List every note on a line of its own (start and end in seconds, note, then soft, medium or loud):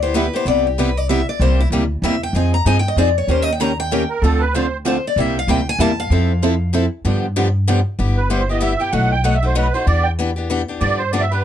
0.00 0.27 D2 medium
0.00 0.14 E4 medium
0.00 0.14 G4 medium
0.00 0.15 C5 medium
0.04 0.13 B3 medium
0.14 0.25 G3 medium
0.14 0.25 B3 loud
0.14 0.26 E4 medium
0.14 0.26 G4 loud
0.14 0.34 B4 medium
0.33 0.45 B3 soft
0.33 0.45 E4 soft
0.33 0.46 G4 medium
0.33 0.47 C5 loud
0.45 1.21 C2 medium
0.45 0.66 C3 medium
0.45 0.66 G3 medium
0.45 0.66 B3 medium
0.45 0.66 E4 medium
0.45 0.66 G4 medium
0.45 0.65 D5 loud
0.67 0.78 G4 soft
0.78 0.89 C3 medium
0.78 0.89 G3 medium
0.78 0.89 B3 medium
0.78 0.89 E4 medium
0.78 0.89 G4 loud
0.78 0.97 B4 medium
0.97 1.09 D5 medium
1.09 1.20 C3 medium
1.09 1.20 G3 medium
1.09 1.20 B3 medium
1.09 1.21 E4 medium
1.09 1.21 G4 medium
1.09 1.27 E5 loud
1.29 1.41 D5 medium
1.40 1.65 C2 medium
1.40 1.60 C3 medium
1.40 1.61 G3 medium
1.40 1.61 A#3 medium
1.40 1.61 E4 medium
1.40 1.61 G4 medium
1.40 1.59 C5 medium
1.60 1.68 E4 medium
1.70 1.98 D2 medium
1.70 1.83 C3 medium
1.70 1.83 G3 medium
1.70 1.83 A#3 medium
1.70 1.83 E4 medium
1.70 1.83 G4 medium
2.02 2.29 E2 medium
2.02 2.14 C3 medium
2.02 2.14 G3 medium
2.02 2.15 A#3 medium
2.02 2.15 E4 loud
2.02 2.15 G4 loud
2.02 2.21 E5 medium
2.23 2.35 G5 loud
2.33 2.59 F2 medium
2.33 2.54 F3 medium
2.33 2.55 C4 medium
2.33 2.55 D#4 medium
2.33 2.55 G#4 medium
2.33 2.53 G#5 medium
2.54 2.66 A#5 loud
2.65 2.92 G2 medium
2.65 2.77 F3 medium
2.65 2.77 C4 medium
2.65 2.77 D#4 medium
2.65 2.77 G#4 loud
2.65 2.77 G#5 medium
2.79 2.88 G5 medium
2.88 2.98 D#5 medium
2.96 3.23 F2 medium
2.96 3.08 F3 medium
2.96 3.08 C4 medium
2.96 3.09 D#4 loud
2.96 3.09 G#4 medium
2.96 3.16 D5 medium
3.18 3.29 C#5 medium
3.28 4.03 D#2 medium
3.28 3.48 D#3 medium
3.28 3.49 A#3 medium
3.28 3.49 C#4 medium
3.28 3.49 G4 medium
3.28 3.49 A#4 medium
3.28 3.42 C5 medium
3.42 3.51 D#5 medium
3.52 3.61 G5 medium
3.60 3.71 D#3 medium
3.60 3.71 A#3 medium
3.60 3.71 C#4 loud
3.60 3.71 G4 medium
3.60 3.71 A#4 loud
3.60 3.79 A#5 loud
3.80 4.08 G5 loud
3.91 4.02 D#3 medium
3.91 4.02 A#3 medium
3.91 4.02 C#4 medium
3.91 4.03 G4 medium
3.91 4.03 A#4 loud
4.09 4.23 A#4 medium
4.22 4.97 D2 medium
4.22 4.43 D3 medium
4.22 4.43 F3 medium
4.22 4.43 A3 medium
4.22 4.43 C4 medium
4.22 4.43 D4 medium
4.22 4.43 F4 medium
4.22 4.42 A4 medium
4.22 4.44 A4 medium
4.40 4.54 B4 loud
4.54 4.65 D3 medium
4.54 4.65 F3 medium
4.54 4.65 A3 medium
4.54 4.66 C4 medium
4.54 4.66 D4 medium
4.54 4.65 F4 medium
4.54 4.66 A4 loud
4.54 4.77 C5 medium
4.85 4.96 D3 medium
4.85 4.96 F3 medium
4.85 4.96 A3 medium
4.85 4.96 C4 medium
4.85 4.97 D4 medium
4.85 4.96 F4 loud
4.85 4.97 A4 medium
4.85 5.05 C5 medium
5.07 5.18 D5 medium
5.16 5.41 C2 medium
5.16 5.37 C3 medium
5.16 5.37 G3 medium
5.16 5.37 A#3 medium
5.16 5.38 E4 medium
5.16 5.38 G4 medium
5.20 5.37 E5 medium
5.39 5.49 F5 loud
5.47 5.74 D2 medium
5.47 5.59 C3 medium
5.47 5.59 G3 medium
5.47 5.59 A#3 loud
5.47 5.60 E4 loud
5.47 5.60 G4 loud
5.47 5.67 G5 loud
5.69 5.80 G#5 loud
5.79 6.06 E2 medium
5.79 5.91 C3 medium
5.79 5.91 G3 medium
5.79 5.91 A#3 loud
5.79 5.91 E4 loud
5.79 5.91 G4 loud
5.79 5.98 A5 loud
6.00 6.70 F5 medium
6.10 6.86 F2 medium
6.10 6.31 F3 medium
6.10 6.31 C4 medium
6.10 6.31 E4 medium
6.10 6.32 A4 medium
6.43 6.53 F3 loud
6.43 6.53 C4 medium
6.43 6.54 E4 medium
6.43 6.54 A4 loud
6.73 6.84 F3 medium
6.73 6.84 C4 loud
6.73 6.85 E4 loud
6.73 6.85 A4 loud
7.05 7.80 G2 medium
7.05 7.25 D3 medium
7.05 7.25 F3 medium
7.05 7.25 B3 medium
7.05 7.25 D4 medium
7.05 7.25 G4 medium
7.36 7.47 D3 medium
7.36 7.47 F3 medium
7.36 7.47 B3 loud
7.36 7.47 D4 loud
7.36 7.47 G4 loud
7.68 7.78 D3 loud
7.68 7.79 F3 loud
7.68 7.79 B3 loud
7.68 7.79 D4 loud
7.68 7.79 G4 loud
7.99 8.74 G1 medium
7.99 8.19 G3 medium
7.99 8.19 B3 medium
7.99 8.19 E4 medium
7.99 8.19 G4 medium
8.17 8.30 B4 medium
8.30 8.41 G3 medium
8.30 8.41 B3 medium
8.30 8.41 E4 loud
8.30 8.41 G4 medium
8.30 8.49 C5 medium
8.49 8.60 B3 soft
8.49 8.60 E4 soft
8.49 8.61 G4 medium
8.49 8.62 D#5 medium
8.61 8.72 G3 medium
8.61 8.72 B3 medium
8.61 8.73 E4 medium
8.61 8.73 G4 loud
8.61 8.80 E5 medium
8.80 8.93 B3 soft
8.80 8.93 E4 soft
8.80 8.92 G4 medium
8.80 8.93 G5 loud
8.92 9.68 B1 medium
8.92 9.13 B2 medium
8.92 9.13 F#3 medium
8.92 9.13 A3 medium
8.92 9.13 D#4 medium
8.92 9.13 F#4 medium
8.92 9.11 F#5 medium
9.12 9.24 G5 loud
9.24 9.35 B2 medium
9.24 9.35 F#3 medium
9.24 9.35 A3 medium
9.24 9.36 D#4 loud
9.24 9.36 F#4 medium
9.24 9.34 F#5 medium
9.35 9.45 E5 medium
9.43 9.55 A3 soft
9.43 9.55 D#4 soft
9.43 9.55 F#4 medium
9.43 9.56 C5 medium
9.55 9.66 B2 medium
9.55 9.67 F#3 medium
9.55 9.67 A3 medium
9.55 9.67 D#4 loud
9.55 9.67 F#4 medium
9.55 9.74 B4 medium
9.73 9.87 A3 soft
9.73 9.87 D#4 medium
9.73 9.87 F#4 medium
9.73 9.86 C5 medium
9.87 10.62 E2 medium
9.87 10.07 E3 medium
9.87 10.07 B3 medium
9.87 10.07 D4 medium
9.87 10.07 G4 medium
9.87 10.05 D5 medium
10.03 10.11 G5 loud
10.19 10.29 E3 medium
10.19 10.30 B3 medium
10.19 10.30 D4 loud
10.19 10.30 G4 loud
10.36 10.49 B3 medium
10.36 10.49 D4 medium
10.36 10.49 G4 medium
10.50 10.61 E3 medium
10.50 10.61 B3 medium
10.50 10.61 D4 loud
10.50 10.61 G4 loud
10.68 10.80 B3 soft
10.68 10.80 D4 medium
10.68 10.81 G4 medium
10.80 11.44 G2 medium
10.80 11.01 D3 medium
10.80 11.01 F3 medium
10.80 11.01 B3 medium
10.80 11.01 D4 medium
10.80 11.01 G4 medium
10.80 10.99 D5 medium
10.98 11.11 C5 medium
11.12 11.24 D3 medium
11.12 11.24 F3 medium
11.12 11.24 B3 medium
11.12 11.24 D4 medium
11.12 11.24 G4 loud
11.12 11.22 D5 medium
11.20 11.32 E5 medium
11.31 11.43 B3 soft
11.31 11.44 D4 medium
11.31 11.44 G4 medium
11.31 11.44 B4 medium